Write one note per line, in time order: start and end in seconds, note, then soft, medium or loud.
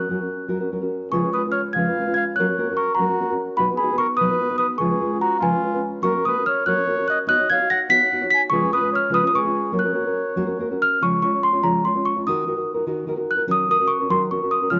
0.00 0.67 F#6 medium
0.09 0.19 F#3 medium
0.09 0.20 C#4 medium
0.09 0.20 F#4 medium
0.09 0.19 A#4 medium
0.20 0.48 C#4 soft
0.20 0.48 F#4 soft
0.20 0.48 A#4 soft
0.48 0.59 F#3 medium
0.48 0.60 C#4 medium
0.48 0.60 F#4 medium
0.48 0.59 A#4 medium
0.60 0.71 C#4 soft
0.60 0.71 F#4 medium
0.60 0.71 A#4 medium
0.71 0.81 F#3 soft
0.71 0.81 C#4 medium
0.71 0.82 F#4 medium
0.71 0.80 A#4 medium
0.81 1.11 C#4 soft
0.81 1.12 F#4 medium
0.81 1.12 A#4 medium
1.11 1.23 C#3 medium
1.11 1.23 F3 medium
1.11 1.23 G#3 medium
1.11 1.23 C#4 medium
1.11 1.22 F4 medium
1.11 1.32 G#4 medium
1.11 1.22 B4 medium
1.11 1.32 C#6 medium
1.23 1.34 G#3 soft
1.23 1.34 C#4 soft
1.23 1.34 F4 soft
1.23 1.34 B4 medium
1.33 1.45 G#3 medium
1.33 1.44 C#4 medium
1.33 1.42 B4 medium
1.33 1.43 D#6 medium
1.37 1.45 F4 medium
1.37 1.45 B4 medium
1.47 1.75 G#3 soft
1.47 1.76 C#4 soft
1.47 1.76 F4 soft
1.47 1.75 B4 soft
1.52 1.61 C#5 medium
1.52 1.61 F6 medium
1.73 1.85 C#3 medium
1.73 1.86 F3 medium
1.73 1.86 G#3 medium
1.73 2.13 F5 medium
1.73 2.12 G#6 medium
1.77 1.86 C#4 medium
1.77 1.86 F4 medium
1.77 1.87 B4 medium
1.88 1.98 G#3 soft
1.88 1.98 C#4 soft
1.88 1.97 F4 soft
1.88 1.97 B4 medium
1.99 2.07 G#3 soft
1.99 2.07 C#4 medium
1.99 2.06 F4 medium
1.99 2.06 B4 medium
2.07 2.37 G#3 soft
2.07 2.37 C#4 soft
2.07 2.36 F4 medium
2.07 2.36 B4 soft
2.14 2.25 F5 medium
2.14 2.23 G#6 medium
2.36 2.48 F#3 medium
2.36 2.48 A#3 medium
2.36 2.48 C#4 medium
2.36 2.47 A#4 medium
2.36 2.74 C#5 medium
2.36 2.74 F#6 medium
2.40 2.48 F#4 medium
2.50 2.57 C#4 soft
2.50 2.58 F#4 soft
2.58 2.67 A#3 medium
2.58 2.67 C#4 medium
2.58 2.68 F#4 medium
2.58 2.68 A#4 medium
2.70 2.98 C#4 soft
2.70 2.99 F#4 soft
2.70 2.98 A#4 medium
2.75 2.94 A#4 medium
2.75 2.97 C#6 medium
2.95 3.39 F#4 medium
2.95 3.38 A#5 medium
2.99 3.08 F#3 medium
2.99 3.09 A#3 medium
2.99 3.08 C#4 medium
2.99 3.08 F#4 medium
2.99 3.07 A#4 medium
3.08 3.19 C#4 soft
3.08 3.19 F#4 medium
3.08 3.18 A#4 soft
3.19 3.28 A#3 soft
3.19 3.29 C#4 medium
3.19 3.29 F#4 medium
3.19 3.29 A#4 medium
3.30 3.58 C#4 soft
3.30 3.58 F#4 medium
3.30 3.58 A#4 medium
3.56 3.68 B2 medium
3.56 3.68 F#3 medium
3.56 3.68 B3 medium
3.56 3.68 D#4 medium
3.56 3.66 F#4 medium
3.56 3.69 F#4 medium
3.56 3.69 B4 medium
3.56 3.67 B5 medium
3.70 3.80 B3 soft
3.70 3.80 D#4 soft
3.70 3.80 F#4 medium
3.70 3.80 B4 medium
3.76 3.95 G#4 medium
3.76 3.98 B5 medium
3.82 3.90 B3 medium
3.82 3.90 D#4 medium
3.82 3.90 F#4 medium
3.82 3.90 B4 medium
3.92 4.20 B3 soft
3.92 4.19 D#4 soft
3.92 4.20 F#4 soft
3.92 4.20 B4 soft
3.98 4.07 A#4 medium
3.98 4.07 C#6 medium
4.17 4.30 B2 medium
4.17 4.30 F#3 medium
4.17 4.29 D#4 medium
4.17 4.56 B4 medium
4.17 4.57 D#6 medium
4.21 4.30 B3 medium
4.21 4.30 F#4 medium
4.21 4.29 B4 medium
4.30 4.38 B3 soft
4.30 4.39 D#4 soft
4.30 4.40 F#4 soft
4.30 4.40 B4 medium
4.39 4.49 B3 medium
4.39 4.50 D#4 medium
4.39 4.49 F#4 soft
4.39 4.49 B4 medium
4.50 4.79 B3 soft
4.50 4.80 D#4 soft
4.50 4.80 F#4 soft
4.50 4.79 B4 medium
4.58 4.68 B4 medium
4.58 4.67 D#6 medium
4.78 4.90 C#3 medium
4.78 4.90 F3 medium
4.78 4.90 G#3 medium
4.78 4.91 C#4 medium
4.78 4.90 F4 medium
4.78 5.18 G#4 medium
4.78 4.90 B4 medium
4.78 5.17 C#6 medium
4.91 4.99 G#3 soft
4.91 5.00 C#4 soft
4.91 5.00 F4 soft
4.91 5.00 B4 medium
5.00 5.10 G#3 medium
5.00 5.11 C#4 medium
5.00 5.11 F4 medium
5.00 5.11 B4 medium
5.13 5.40 G#3 soft
5.13 5.40 C#4 soft
5.13 5.40 F4 soft
5.13 5.41 B4 soft
5.21 5.39 F#4 medium
5.21 5.42 A#5 medium
5.39 5.52 C#3 medium
5.39 5.52 F3 medium
5.39 5.52 G#3 medium
5.39 5.52 C#4 medium
5.39 5.84 F4 medium
5.39 5.52 F4 medium
5.39 5.51 B4 medium
5.39 5.86 G#5 medium
5.52 5.62 G#3 soft
5.52 5.62 C#4 soft
5.52 5.63 F4 soft
5.52 5.63 B4 medium
5.63 5.73 G#3 medium
5.63 5.73 C#4 medium
5.63 5.74 F4 medium
5.63 5.73 B4 medium
5.74 6.03 G#3 soft
5.74 6.03 C#4 soft
5.74 6.02 F4 soft
5.74 6.03 B4 soft
6.02 6.14 F#3 medium
6.02 6.14 A#3 medium
6.02 6.15 C#4 medium
6.02 6.14 F#4 medium
6.02 6.14 A#4 medium
6.02 6.25 A#4 medium
6.02 6.26 C#6 medium
6.16 6.25 C#4 soft
6.16 6.26 F#4 soft
6.25 6.36 A#3 medium
6.25 6.36 C#4 medium
6.25 6.37 F#4 medium
6.25 6.37 A#4 medium
6.25 6.45 B4 medium
6.25 6.46 D#6 medium
6.38 6.66 C#4 soft
6.38 6.65 F#4 soft
6.38 6.66 A#4 soft
6.46 6.65 C#5 medium
6.46 6.67 F6 medium
6.66 6.77 F#3 medium
6.66 6.77 A#3 medium
6.66 6.77 C#4 medium
6.66 6.75 F#4 medium
6.66 6.76 A#4 medium
6.66 7.05 C#5 medium
6.66 7.07 F#6 medium
6.76 6.86 C#4 soft
6.76 6.87 F#4 soft
6.86 6.97 A#3 soft
6.86 6.97 C#4 soft
6.86 6.97 F#4 medium
6.86 6.96 A#4 medium
6.98 7.28 C#4 soft
6.98 7.28 F#4 medium
6.98 7.27 A#4 medium
7.08 7.18 D#5 medium
7.08 7.17 F#6 medium
7.27 7.38 B3 medium
7.27 7.38 D#4 medium
7.27 7.39 F#4 medium
7.27 7.38 C#5 medium
7.27 7.48 D#5 medium
7.27 7.50 F#6 loud
7.39 7.49 D#4 soft
7.39 7.50 F#4 medium
7.39 7.49 C#5 medium
7.50 7.60 B3 medium
7.50 7.60 D#4 medium
7.50 7.60 F#4 medium
7.50 7.60 C#5 medium
7.50 7.68 F5 medium
7.50 7.70 G#6 medium
7.61 7.88 D#4 soft
7.61 7.89 F#4 soft
7.61 7.89 C#5 soft
7.70 7.79 F#5 medium
7.70 7.79 A#6 loud
7.89 8.00 B3 medium
7.89 7.99 D#4 medium
7.89 8.00 F#4 medium
7.89 8.00 C#5 medium
7.89 8.28 F#5 medium
7.89 8.28 B6 loud
8.03 8.11 D#4 soft
8.03 8.12 C#5 soft
8.12 8.21 B3 medium
8.12 8.21 D#4 medium
8.12 8.21 F#4 medium
8.12 8.21 C#5 medium
8.22 8.51 D#4 soft
8.22 8.51 F#4 soft
8.22 8.50 C#5 medium
8.30 8.42 G#5 medium
8.30 8.39 B6 loud
8.50 8.61 C#3 medium
8.50 8.62 F3 medium
8.50 8.62 G#3 medium
8.50 8.62 C#4 medium
8.50 8.61 F4 medium
8.50 8.71 G#4 medium
8.50 8.61 B4 medium
8.50 8.70 C#6 loud
8.62 8.73 G#3 soft
8.62 8.73 C#4 soft
8.62 8.73 F4 soft
8.62 8.72 B4 medium
8.73 8.82 G#3 medium
8.73 8.83 C#4 medium
8.73 8.82 F4 medium
8.73 8.91 B4 medium
8.73 8.81 B4 medium
8.73 8.93 D#6 medium
8.82 9.09 G#3 soft
8.82 9.10 C#4 soft
8.82 9.10 F4 soft
8.82 9.10 B4 soft
8.93 9.10 C#5 medium
8.93 9.14 F6 medium
9.10 9.21 C#3 medium
9.10 9.22 F3 medium
9.10 9.22 G#3 medium
9.10 9.22 C#4 medium
9.10 9.22 F4 medium
9.10 9.21 B4 medium
9.10 9.26 B4 medium
9.14 9.26 D#6 medium
9.23 9.31 G#3 soft
9.23 9.31 C#4 soft
9.23 9.33 F4 soft
9.23 9.33 B4 medium
9.27 9.33 B4 medium
9.27 9.34 D#6 medium
9.32 9.43 G#3 medium
9.32 9.43 C#4 medium
9.32 9.43 F4 medium
9.32 9.71 G#4 medium
9.32 9.42 B4 medium
9.32 9.76 C#6 medium
9.44 9.72 G#3 soft
9.44 9.72 C#4 soft
9.44 9.73 F4 medium
9.44 9.73 B4 soft
9.72 9.84 F#3 medium
9.72 9.84 A#3 medium
9.72 9.84 C#4 medium
9.72 9.84 F#4 medium
9.72 9.83 A#4 medium
9.72 10.75 C#5 medium
9.79 10.78 F#6 medium
9.84 9.93 C#4 soft
9.84 9.94 F#4 soft
9.84 9.93 A#4 medium
9.93 10.04 A#3 medium
9.93 10.05 C#4 medium
9.93 10.05 F#4 medium
9.93 10.05 A#4 medium
10.06 10.35 C#4 soft
10.06 10.36 F#4 soft
10.06 10.36 A#4 soft
10.36 10.47 F#3 medium
10.36 10.48 A#3 medium
10.36 10.47 C#4 medium
10.36 10.46 F#4 medium
10.36 10.45 A#4 medium
10.46 10.58 C#4 soft
10.46 10.58 F#4 medium
10.46 10.58 A#4 medium
10.59 10.69 A#3 medium
10.59 10.69 C#4 medium
10.59 10.70 F#4 medium
10.59 10.70 A#4 medium
10.71 11.00 C#4 medium
10.71 11.01 F#4 soft
10.71 11.00 A#4 soft
10.82 11.01 F6 loud
11.01 11.22 C#3 medium
11.01 11.22 F3 medium
11.01 11.21 G#3 medium
11.01 11.22 C#4 medium
11.01 11.22 F4 medium
11.01 11.22 C#5 medium
11.01 11.21 C#6 medium
11.22 11.32 G#3 medium
11.22 11.32 C#4 medium
11.22 11.32 F4 medium
11.22 11.33 C#5 medium
11.22 11.40 C#6 medium
11.34 11.53 G#3 soft
11.34 11.53 C#4 soft
11.34 11.51 F4 soft
11.34 11.52 C#5 soft
11.43 11.63 C6 medium
11.53 11.62 G#3 soft
11.53 11.62 C#4 soft
11.53 11.62 F4 medium
11.53 11.62 C#5 medium
11.62 11.84 C#3 medium
11.62 11.84 F3 medium
11.62 11.84 G#3 medium
11.62 11.84 C#4 medium
11.62 11.84 F4 medium
11.62 11.84 C#5 medium
11.62 11.83 A#5 medium
11.85 11.94 G#3 soft
11.85 11.95 C#4 soft
11.85 11.94 F4 medium
11.85 11.94 C#5 medium
11.85 12.05 C6 medium
11.95 12.15 G#3 soft
11.95 12.15 C#4 soft
11.95 12.14 F4 medium
11.95 12.14 C#5 medium
12.05 12.14 C#6 medium
12.16 12.25 G#3 soft
12.16 12.25 C#4 soft
12.16 12.25 F4 soft
12.16 12.25 C#5 soft
12.27 12.45 D#3 medium
12.27 12.45 D#4 medium
12.27 12.46 F#4 medium
12.27 12.47 A#4 medium
12.27 12.68 D#6 medium
12.46 12.56 D#3 medium
12.46 12.56 D#4 medium
12.46 12.56 F#4 medium
12.46 12.55 A#4 medium
12.57 12.76 D#4 soft
12.57 12.74 F#4 soft
12.57 12.73 A#4 soft
12.74 12.86 D#4 medium
12.74 12.85 F#4 medium
12.74 12.84 A#4 medium
12.87 13.06 D#3 medium
12.87 13.06 D#4 medium
12.87 13.06 F#4 medium
12.87 13.07 A#4 medium
13.07 13.17 D#3 medium
13.07 13.16 D#4 medium
13.07 13.16 F#4 medium
13.07 13.15 A#4 medium
13.16 13.37 D#4 soft
13.16 13.36 F#4 medium
13.16 13.35 A#4 medium
13.31 13.39 F#6 medium
13.37 13.47 D#4 soft
13.37 13.47 F#4 soft
13.37 13.47 A#4 soft
13.47 13.67 D#3 medium
13.47 13.68 F#3 medium
13.47 13.68 C#4 medium
13.47 13.68 F#4 medium
13.47 13.69 A#4 medium
13.51 13.70 D#6 medium
13.69 13.78 D#3 medium
13.69 13.79 C#4 medium
13.69 13.78 F#4 medium
13.69 13.79 A#4 medium
13.69 13.88 D#6 medium
13.80 14.00 C#4 soft
13.80 13.99 F#4 soft
13.80 13.99 A#4 soft
13.87 14.08 C#6 medium
14.00 14.09 C#4 medium
14.00 14.09 F#4 medium
14.00 14.09 A#4 soft
14.09 14.30 D#3 medium
14.09 14.30 F#3 medium
14.09 14.30 C#4 medium
14.09 14.31 F#4 medium
14.09 14.31 A#4 medium
14.09 14.20 C6 medium
14.31 14.40 D#3 soft
14.31 14.41 C#4 medium
14.31 14.41 F#4 medium
14.31 14.41 A#4 medium
14.31 14.51 C#6 medium
14.42 14.62 C#4 soft
14.42 14.61 F#4 medium
14.42 14.61 A#4 medium
14.51 14.69 D#6 medium
14.62 14.71 C#4 soft
14.62 14.71 F#4 soft
14.62 14.71 A#4 soft
14.70 14.80 C#3 medium
14.70 14.80 F3 medium
14.70 14.80 G#3 medium
14.70 14.80 C#4 medium
14.70 14.80 F4 medium
14.70 14.80 C#5 medium
14.70 14.80 F6 medium